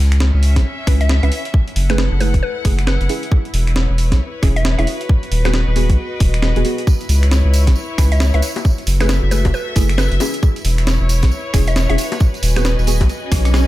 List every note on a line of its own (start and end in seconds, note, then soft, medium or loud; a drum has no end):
0.00 0.32 C#2 loud
0.00 2.17 C#4 medium
0.12 finger snap medium
0.12 closed hi-hat medium
0.20 snare loud
0.31 0.58 C#2 medium
0.31 2.17 E5 medium
0.43 open hi-hat medium
0.56 0.64 B1 medium
0.56 kick medium
0.56 snare medium
0.56 closed hi-hat medium
0.87 1.20 C#2 medium
0.87 0.97 C#4 medium
0.87 0.97 E4 medium
0.87 0.97 B4 medium
0.87 finger snap medium
0.87 kick loud
0.87 open hi-hat loud
1.01 1.10 E5 medium
1.01 closed hi-hat medium
1.09 finger snap medium
1.09 snare loud
1.23 1.31 C#2 medium
1.23 1.29 C#4 medium
1.23 1.29 E4 medium
1.23 1.29 B4 medium
1.23 1.33 E5 medium
1.23 closed hi-hat soft
1.32 open hi-hat medium
1.45 closed hi-hat medium
1.54 4.87 E4 medium
1.54 kick loud
1.68 closed hi-hat soft
1.72 2.09 F#1 medium
1.72 3.10 A4 medium
1.72 3.82 F#5 medium
1.72 open hi-hat loud
1.90 1.96 A3 medium
1.90 1.96 E4 medium
1.90 1.96 G#4 medium
1.90 1.99 B4 medium
1.90 finger snap medium
1.90 snare medium
1.90 closed hi-hat medium
1.98 snare loud
2.12 2.36 F#1 medium
2.20 2.30 A3 medium
2.20 2.30 E4 medium
2.20 2.30 G#4 medium
2.20 2.35 B4 medium
2.20 open hi-hat medium
2.34 2.42 E1 medium
2.34 kick medium
2.34 closed hi-hat medium
2.43 2.57 B4 medium
2.65 2.98 F#1 medium
2.65 2.75 A3 medium
2.65 2.75 E4 medium
2.65 2.75 G#4 loud
2.65 kick loud
2.65 open hi-hat loud
2.79 finger snap medium
2.79 closed hi-hat medium
2.87 3.15 B4 medium
2.87 finger snap medium
2.87 snare loud
3.01 3.08 F#1 medium
3.01 closed hi-hat soft
3.09 3.24 C#4 medium
3.09 3.24 E4 medium
3.09 3.24 G#4 medium
3.09 open hi-hat medium
3.23 closed hi-hat medium
3.32 kick loud
3.45 9.28 B4 medium
3.45 closed hi-hat soft
3.54 3.87 E1 loud
3.54 open hi-hat loud
3.66 5.69 C#5 medium
3.66 finger snap medium
3.66 closed hi-hat medium
3.76 snare loud
3.90 4.13 E1 medium
3.98 open hi-hat medium
4.12 4.19 C#2 medium
4.12 kick medium
4.12 snare medium
4.12 closed hi-hat medium
4.43 4.76 E1 medium
4.43 4.52 C#4 medium
4.43 4.52 E4 medium
4.43 4.52 G#4 medium
4.43 finger snap medium
4.43 kick loud
4.43 open hi-hat loud
4.56 4.66 E5 medium
4.56 closed hi-hat medium
4.65 finger snap medium
4.65 snare loud
4.78 4.86 E1 medium
4.78 4.85 C#4 medium
4.78 4.85 E4 medium
4.78 4.85 G#4 medium
4.78 4.88 E5 medium
4.78 closed hi-hat soft
4.87 7.59 F#4 medium
4.87 open hi-hat medium
5.01 closed hi-hat medium
5.09 kick loud
5.23 closed hi-hat soft
5.32 5.65 D#1 loud
5.32 open hi-hat medium
5.45 5.51 B3 medium
5.45 5.51 F#4 medium
5.45 5.51 G#4 medium
5.45 5.55 B4 medium
5.45 finger snap medium
5.45 snare medium
5.45 closed hi-hat medium
5.52 7.59 D#5 medium
5.52 snare loud
5.67 5.91 D#1 medium
5.76 5.86 B3 medium
5.76 5.86 F#4 medium
5.76 5.86 G#4 medium
5.76 open hi-hat medium
5.90 5.97 C#2 medium
5.90 kick medium
5.90 closed hi-hat medium
6.20 6.54 D#1 medium
6.20 kick loud
6.20 open hi-hat loud
6.34 finger snap medium
6.34 closed hi-hat medium
6.42 finger snap medium
6.42 snare loud
6.56 6.64 D#1 medium
6.56 6.64 B3 medium
6.56 6.64 F#4 medium
6.56 6.64 G#4 medium
6.56 closed hi-hat soft
6.65 6.80 B3 medium
6.65 6.80 F#4 medium
6.65 6.80 G#4 medium
6.65 open hi-hat medium
6.78 closed hi-hat medium
6.87 9.28 E4 medium
6.87 kick loud
6.87 tambourine medium
7.01 closed hi-hat soft
7.01 tambourine soft
7.09 7.43 C#2 medium
7.09 open hi-hat loud
7.09 tambourine medium
7.17 9.28 C#5 medium
7.23 finger snap medium
7.23 closed hi-hat medium
7.23 tambourine soft
7.32 snare loud
7.32 tambourine medium
7.45 7.69 C#2 medium
7.54 open hi-hat medium
7.54 tambourine medium
7.67 7.75 B1 medium
7.67 kick medium
7.67 snare medium
7.67 closed hi-hat medium
7.67 tambourine soft
7.75 tambourine soft
7.98 8.31 C#2 medium
7.98 8.08 C#4 medium
7.98 8.08 E4 medium
7.98 8.08 B4 medium
7.98 finger snap medium
7.98 kick loud
7.98 open hi-hat medium
7.98 tambourine medium
8.12 8.21 E5 medium
8.12 closed hi-hat medium
8.12 tambourine soft
8.20 finger snap medium
8.20 snare loud
8.20 tambourine medium
8.34 8.42 C#2 medium
8.34 8.40 C#4 medium
8.34 8.40 E4 medium
8.34 8.40 B4 medium
8.34 8.44 E5 medium
8.34 closed hi-hat medium
8.42 open hi-hat medium
8.42 tambourine medium
8.56 closed hi-hat medium
8.56 tambourine soft
8.56 high bongo medium
8.65 10.82 F#4 medium
8.65 kick loud
8.65 tambourine medium
8.78 closed hi-hat soft
8.78 tambourine soft
8.87 9.20 F#1 medium
8.87 open hi-hat loud
8.87 tambourine medium
8.95 10.20 A4 medium
8.95 10.93 E5 medium
9.01 9.07 A3 medium
9.01 9.07 E4 medium
9.01 9.07 G#4 loud
9.01 9.10 B4 medium
9.01 finger snap medium
9.01 snare medium
9.01 closed hi-hat medium
9.01 tambourine soft
9.09 snare loud
9.09 tambourine medium
9.23 9.47 F#1 medium
9.31 9.41 A3 medium
9.31 9.41 E4 medium
9.31 9.41 G#4 medium
9.31 9.46 B4 medium
9.31 open hi-hat medium
9.31 tambourine medium
9.45 9.53 E1 medium
9.45 kick medium
9.45 closed hi-hat medium
9.45 tambourine soft
9.45 high bongo medium
9.54 9.68 B4 medium
9.54 tambourine soft
9.76 10.09 F#1 medium
9.76 9.86 A3 medium
9.76 9.86 E4 medium
9.76 9.86 G#4 loud
9.76 kick loud
9.76 open hi-hat loud
9.76 tambourine medium
9.89 finger snap medium
9.89 closed hi-hat medium
9.89 tambourine soft
9.98 10.26 B4 medium
9.98 finger snap medium
9.98 snare loud
9.98 tambourine medium
10.12 10.19 F#1 medium
10.12 closed hi-hat medium
10.20 10.35 C#4 medium
10.20 11.98 E4 medium
10.20 10.35 E4 medium
10.20 10.35 G#4 medium
10.20 open hi-hat medium
10.20 tambourine medium
10.20 high bongo medium
10.34 closed hi-hat medium
10.34 tambourine soft
10.43 13.67 B4 medium
10.43 kick loud
10.43 tambourine medium
10.56 closed hi-hat soft
10.56 tambourine soft
10.65 10.98 E1 medium
10.65 open hi-hat loud
10.65 tambourine medium
10.73 12.80 C#5 medium
10.78 finger snap medium
10.78 closed hi-hat medium
10.78 tambourine soft
10.87 snare loud
10.87 tambourine soft
11.01 11.25 E1 medium
11.09 open hi-hat medium
11.09 tambourine medium
11.22 11.31 C#2 medium
11.22 kick medium
11.22 snare medium
11.22 closed hi-hat medium
11.22 tambourine soft
11.31 tambourine soft
11.54 11.87 E1 medium
11.54 11.63 C#4 medium
11.54 11.63 E4 medium
11.54 11.63 G#4 medium
11.54 finger snap medium
11.54 kick loud
11.54 open hi-hat loud
11.54 tambourine medium
11.67 11.77 E5 medium
11.67 closed hi-hat medium
11.67 tambourine soft
11.76 finger snap medium
11.76 snare loud
11.76 tambourine medium
11.89 11.97 E1 medium
11.89 11.96 C#4 medium
11.89 11.96 E4 medium
11.89 11.96 G#4 medium
11.89 11.99 E5 medium
11.89 closed hi-hat medium
11.98 13.67 F#4 medium
11.98 open hi-hat medium
11.98 tambourine medium
12.12 closed hi-hat medium
12.12 tambourine soft
12.12 high bongo medium
12.20 kick loud
12.20 tambourine medium
12.34 closed hi-hat soft
12.34 tambourine soft
12.38 13.67 D#5 medium
12.38 13.67 G#5 medium
12.43 12.76 D#1 loud
12.43 open hi-hat loud
12.43 tambourine medium
12.56 12.62 B3 medium
12.56 12.62 F#4 medium
12.56 12.62 G#4 medium
12.56 12.66 B4 medium
12.56 finger snap medium
12.56 snare medium
12.56 closed hi-hat medium
12.56 tambourine soft
12.65 snare loud
12.65 tambourine medium
12.79 13.02 D#1 medium
12.79 tambourine soft
12.87 12.97 B3 medium
12.87 12.97 F#4 medium
12.87 12.97 G#4 medium
12.87 open hi-hat medium
12.87 tambourine medium
13.01 13.08 C#2 medium
13.01 kick medium
13.01 closed hi-hat medium
13.01 tambourine soft
13.01 high bongo medium
13.09 closed hi-hat soft
13.09 tambourine soft
13.09 swell medium
13.32 13.65 B1 medium
13.32 kick loud
13.32 cross-stick medium
13.32 open hi-hat loud
13.32 tambourine medium
13.45 cross-stick medium
13.45 closed hi-hat medium
13.45 tambourine soft
13.54 cross-stick medium
13.54 snare loud
13.54 tambourine medium